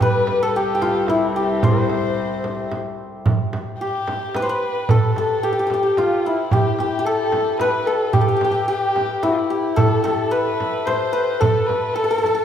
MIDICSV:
0, 0, Header, 1, 5, 480
1, 0, Start_track
1, 0, Time_signature, 3, 2, 24, 8
1, 0, Tempo, 543478
1, 10994, End_track
2, 0, Start_track
2, 0, Title_t, "Kamancheh"
2, 0, Program_c, 0, 110
2, 11, Note_on_c, 0, 71, 79
2, 374, Note_on_c, 0, 69, 69
2, 387, Note_off_c, 0, 71, 0
2, 499, Note_on_c, 0, 67, 76
2, 512, Note_off_c, 0, 69, 0
2, 958, Note_on_c, 0, 64, 66
2, 971, Note_off_c, 0, 67, 0
2, 1204, Note_on_c, 0, 67, 59
2, 1217, Note_off_c, 0, 64, 0
2, 1448, Note_on_c, 0, 72, 67
2, 1462, Note_off_c, 0, 67, 0
2, 2402, Note_off_c, 0, 72, 0
2, 3351, Note_on_c, 0, 67, 69
2, 3845, Note_on_c, 0, 71, 65
2, 3858, Note_off_c, 0, 67, 0
2, 3956, Note_off_c, 0, 71, 0
2, 3962, Note_on_c, 0, 71, 68
2, 4322, Note_on_c, 0, 69, 65
2, 4335, Note_off_c, 0, 71, 0
2, 4559, Note_off_c, 0, 69, 0
2, 4565, Note_on_c, 0, 69, 63
2, 4803, Note_on_c, 0, 67, 73
2, 4817, Note_off_c, 0, 69, 0
2, 5035, Note_off_c, 0, 67, 0
2, 5040, Note_on_c, 0, 67, 66
2, 5285, Note_on_c, 0, 65, 67
2, 5298, Note_off_c, 0, 67, 0
2, 5522, Note_on_c, 0, 64, 60
2, 5535, Note_off_c, 0, 65, 0
2, 5760, Note_on_c, 0, 67, 67
2, 5773, Note_off_c, 0, 64, 0
2, 5988, Note_off_c, 0, 67, 0
2, 5994, Note_on_c, 0, 67, 68
2, 6225, Note_on_c, 0, 69, 83
2, 6238, Note_off_c, 0, 67, 0
2, 6706, Note_off_c, 0, 69, 0
2, 6711, Note_on_c, 0, 71, 78
2, 6942, Note_on_c, 0, 69, 69
2, 6956, Note_off_c, 0, 71, 0
2, 7189, Note_on_c, 0, 67, 65
2, 7202, Note_off_c, 0, 69, 0
2, 7249, Note_on_c, 0, 69, 60
2, 7263, Note_off_c, 0, 67, 0
2, 7312, Note_on_c, 0, 67, 79
2, 7325, Note_off_c, 0, 69, 0
2, 7662, Note_off_c, 0, 67, 0
2, 7667, Note_on_c, 0, 67, 80
2, 8155, Note_on_c, 0, 64, 66
2, 8169, Note_off_c, 0, 67, 0
2, 8638, Note_on_c, 0, 69, 76
2, 8651, Note_off_c, 0, 64, 0
2, 8871, Note_off_c, 0, 69, 0
2, 8876, Note_on_c, 0, 69, 74
2, 9120, Note_on_c, 0, 71, 84
2, 9133, Note_off_c, 0, 69, 0
2, 9585, Note_on_c, 0, 72, 80
2, 9598, Note_off_c, 0, 71, 0
2, 10070, Note_on_c, 0, 69, 74
2, 10083, Note_off_c, 0, 72, 0
2, 10303, Note_on_c, 0, 71, 72
2, 10316, Note_off_c, 0, 69, 0
2, 10549, Note_on_c, 0, 69, 82
2, 10562, Note_off_c, 0, 71, 0
2, 10788, Note_off_c, 0, 69, 0
2, 10793, Note_on_c, 0, 69, 78
2, 10994, Note_off_c, 0, 69, 0
2, 10994, End_track
3, 0, Start_track
3, 0, Title_t, "Santur"
3, 0, Program_c, 1, 15
3, 0, Note_on_c, 1, 67, 82
3, 0, Note_on_c, 1, 69, 82
3, 0, Note_on_c, 1, 74, 98
3, 19, Note_on_c, 1, 71, 89
3, 372, Note_off_c, 1, 69, 0
3, 376, Note_on_c, 1, 69, 90
3, 492, Note_off_c, 1, 67, 0
3, 495, Note_on_c, 1, 67, 80
3, 656, Note_off_c, 1, 67, 0
3, 660, Note_on_c, 1, 67, 64
3, 723, Note_on_c, 1, 65, 79
3, 742, Note_off_c, 1, 74, 0
3, 967, Note_on_c, 1, 64, 81
3, 1020, Note_off_c, 1, 65, 0
3, 1198, Note_off_c, 1, 67, 0
3, 1201, Note_on_c, 1, 67, 72
3, 1445, Note_on_c, 1, 72, 80
3, 1498, Note_off_c, 1, 71, 0
3, 2962, Note_off_c, 1, 69, 0
3, 3362, Note_off_c, 1, 67, 0
3, 3366, Note_on_c, 1, 67, 73
3, 3775, Note_off_c, 1, 72, 0
3, 3853, Note_on_c, 1, 71, 78
3, 3905, Note_on_c, 1, 72, 75
3, 3958, Note_off_c, 1, 71, 0
3, 3968, Note_on_c, 1, 71, 80
3, 4021, Note_off_c, 1, 72, 0
3, 4048, Note_off_c, 1, 64, 0
3, 4333, Note_on_c, 1, 69, 77
3, 4571, Note_off_c, 1, 69, 0
3, 4574, Note_on_c, 1, 69, 78
3, 4794, Note_off_c, 1, 67, 0
3, 4798, Note_on_c, 1, 67, 79
3, 4877, Note_off_c, 1, 67, 0
3, 4880, Note_on_c, 1, 67, 56
3, 4936, Note_off_c, 1, 67, 0
3, 4939, Note_on_c, 1, 67, 64
3, 5002, Note_off_c, 1, 67, 0
3, 5005, Note_on_c, 1, 67, 57
3, 5063, Note_off_c, 1, 67, 0
3, 5066, Note_on_c, 1, 67, 61
3, 5145, Note_off_c, 1, 67, 0
3, 5148, Note_on_c, 1, 67, 54
3, 5281, Note_on_c, 1, 65, 81
3, 5532, Note_on_c, 1, 64, 67
3, 5585, Note_off_c, 1, 65, 0
3, 5761, Note_off_c, 1, 67, 0
3, 5765, Note_on_c, 1, 67, 80
3, 6003, Note_off_c, 1, 67, 0
3, 6007, Note_on_c, 1, 67, 73
3, 6169, Note_off_c, 1, 67, 0
3, 6173, Note_on_c, 1, 67, 68
3, 6235, Note_off_c, 1, 69, 0
3, 6238, Note_on_c, 1, 69, 86
3, 6386, Note_off_c, 1, 71, 0
3, 6719, Note_on_c, 1, 71, 94
3, 6948, Note_off_c, 1, 69, 0
3, 6952, Note_on_c, 1, 69, 71
3, 7178, Note_off_c, 1, 67, 0
3, 7181, Note_on_c, 1, 67, 83
3, 7249, Note_off_c, 1, 67, 0
3, 7252, Note_on_c, 1, 67, 64
3, 7314, Note_off_c, 1, 67, 0
3, 7318, Note_on_c, 1, 67, 62
3, 7384, Note_off_c, 1, 67, 0
3, 7388, Note_on_c, 1, 67, 57
3, 7455, Note_off_c, 1, 67, 0
3, 7459, Note_on_c, 1, 67, 65
3, 7516, Note_off_c, 1, 67, 0
3, 7519, Note_on_c, 1, 67, 56
3, 7662, Note_off_c, 1, 67, 0
3, 7666, Note_on_c, 1, 67, 79
3, 8149, Note_off_c, 1, 64, 0
3, 8153, Note_on_c, 1, 64, 80
3, 8389, Note_off_c, 1, 67, 0
3, 8393, Note_on_c, 1, 67, 70
3, 8619, Note_off_c, 1, 69, 0
3, 8623, Note_on_c, 1, 69, 91
3, 8862, Note_off_c, 1, 69, 0
3, 8866, Note_on_c, 1, 69, 86
3, 9104, Note_off_c, 1, 71, 0
3, 9108, Note_on_c, 1, 71, 90
3, 9599, Note_on_c, 1, 72, 93
3, 9652, Note_off_c, 1, 71, 0
3, 9828, Note_on_c, 1, 71, 86
3, 9881, Note_off_c, 1, 72, 0
3, 10071, Note_off_c, 1, 69, 0
3, 10074, Note_on_c, 1, 69, 91
3, 10556, Note_off_c, 1, 69, 0
3, 10559, Note_on_c, 1, 69, 82
3, 10629, Note_off_c, 1, 69, 0
3, 10633, Note_on_c, 1, 69, 66
3, 10689, Note_off_c, 1, 69, 0
3, 10692, Note_on_c, 1, 69, 78
3, 10755, Note_off_c, 1, 69, 0
3, 10759, Note_on_c, 1, 69, 66
3, 10824, Note_off_c, 1, 69, 0
3, 10828, Note_on_c, 1, 69, 67
3, 10900, Note_off_c, 1, 69, 0
3, 10904, Note_on_c, 1, 69, 62
3, 10994, Note_off_c, 1, 64, 0
3, 10994, Note_off_c, 1, 67, 0
3, 10994, Note_off_c, 1, 69, 0
3, 10994, Note_off_c, 1, 71, 0
3, 10994, End_track
4, 0, Start_track
4, 0, Title_t, "Cello"
4, 0, Program_c, 2, 42
4, 0, Note_on_c, 2, 36, 62
4, 2922, Note_off_c, 2, 36, 0
4, 10994, End_track
5, 0, Start_track
5, 0, Title_t, "Frame drum"
5, 6, Note_on_c, 9, 64, 77
5, 94, Note_off_c, 9, 64, 0
5, 240, Note_on_c, 9, 64, 62
5, 328, Note_off_c, 9, 64, 0
5, 720, Note_on_c, 9, 64, 64
5, 808, Note_off_c, 9, 64, 0
5, 955, Note_on_c, 9, 64, 67
5, 1044, Note_off_c, 9, 64, 0
5, 1438, Note_on_c, 9, 64, 84
5, 1526, Note_off_c, 9, 64, 0
5, 1674, Note_on_c, 9, 64, 60
5, 1763, Note_off_c, 9, 64, 0
5, 2156, Note_on_c, 9, 64, 60
5, 2244, Note_off_c, 9, 64, 0
5, 2398, Note_on_c, 9, 64, 66
5, 2486, Note_off_c, 9, 64, 0
5, 2876, Note_on_c, 9, 64, 87
5, 2964, Note_off_c, 9, 64, 0
5, 3118, Note_on_c, 9, 64, 68
5, 3207, Note_off_c, 9, 64, 0
5, 3599, Note_on_c, 9, 64, 70
5, 3688, Note_off_c, 9, 64, 0
5, 3838, Note_on_c, 9, 64, 72
5, 3926, Note_off_c, 9, 64, 0
5, 4317, Note_on_c, 9, 64, 93
5, 4405, Note_off_c, 9, 64, 0
5, 4560, Note_on_c, 9, 64, 58
5, 4648, Note_off_c, 9, 64, 0
5, 5034, Note_on_c, 9, 64, 59
5, 5123, Note_off_c, 9, 64, 0
5, 5276, Note_on_c, 9, 64, 67
5, 5364, Note_off_c, 9, 64, 0
5, 5753, Note_on_c, 9, 64, 84
5, 5841, Note_off_c, 9, 64, 0
5, 5994, Note_on_c, 9, 64, 58
5, 6082, Note_off_c, 9, 64, 0
5, 6468, Note_on_c, 9, 64, 66
5, 6557, Note_off_c, 9, 64, 0
5, 6708, Note_on_c, 9, 64, 69
5, 6797, Note_off_c, 9, 64, 0
5, 7184, Note_on_c, 9, 64, 88
5, 7272, Note_off_c, 9, 64, 0
5, 7429, Note_on_c, 9, 64, 65
5, 7517, Note_off_c, 9, 64, 0
5, 7912, Note_on_c, 9, 64, 63
5, 8000, Note_off_c, 9, 64, 0
5, 8150, Note_on_c, 9, 64, 73
5, 8239, Note_off_c, 9, 64, 0
5, 8632, Note_on_c, 9, 64, 87
5, 8720, Note_off_c, 9, 64, 0
5, 8878, Note_on_c, 9, 64, 66
5, 8967, Note_off_c, 9, 64, 0
5, 9365, Note_on_c, 9, 64, 64
5, 9453, Note_off_c, 9, 64, 0
5, 9603, Note_on_c, 9, 64, 67
5, 9692, Note_off_c, 9, 64, 0
5, 10084, Note_on_c, 9, 64, 82
5, 10173, Note_off_c, 9, 64, 0
5, 10326, Note_on_c, 9, 64, 60
5, 10414, Note_off_c, 9, 64, 0
5, 10806, Note_on_c, 9, 64, 62
5, 10895, Note_off_c, 9, 64, 0
5, 10994, End_track
0, 0, End_of_file